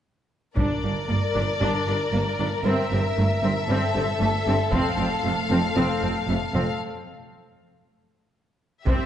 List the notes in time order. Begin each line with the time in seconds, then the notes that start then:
0.56 G1 G2 D4 A#4 D5, taiko
0.83 G1 G2 D4
1.09 G1 G2 A#3
1.34 G1 G2 D4
1.60 G1 G2 D4
1.87 G1 G2 D4
2.12 G1 G2 A#3
2.39 G1 G2 D4
2.65 G1 G2 C4 E5
2.91 G1 G2 C4
3.17 G1 G2 A3
3.43 G1 G2 C4
3.68 G1 G2 C4 A4
3.94 G1 G2 C4
4.19 G1 G2 A3
4.46 G1 G2 C4
4.72 F1 F2 C4 F5, taiko
4.98 F1 F2 C4
5.23 F1 F2 A3
5.50 F1 F2 C4
5.76 F1 F2 C4
6.02 F1 F2 C4
6.28 F1 F2 A3
6.54 F1 F2 C4
8.86 C2 C3 C4 G4 E5, taiko